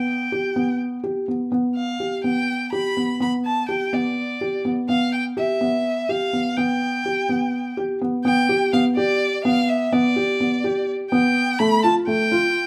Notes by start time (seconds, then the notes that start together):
Already playing: B3 G5
0.32 G4
0.56 B3
1.04 G4
1.28 B3
1.52 B3
1.76 F5
2.00 G4
2.24 B3 G5
2.73 G4 B5
2.97 B3
3.20 B3 B5
3.45 A5
3.69 G4 G5
3.93 B3 D5
4.41 G4
4.65 B3
4.89 B3 F5
5.13 G5
5.37 G4 E5
5.61 B3
6.09 G4 F5
6.33 B3
6.57 B3 G5
7.06 G4
7.29 B3
7.77 G4
8.01 B3
8.25 B3 G5
8.49 G4
8.73 B3 F5
8.96 G4 D5
9.45 B3 F5
9.69 E5
9.92 B3 D5
10.16 G4
10.40 B3
10.64 G4
11.11 B3 G5
11.59 A3 B5
11.84 F4 A5
12.07 A3 G5
12.32 F4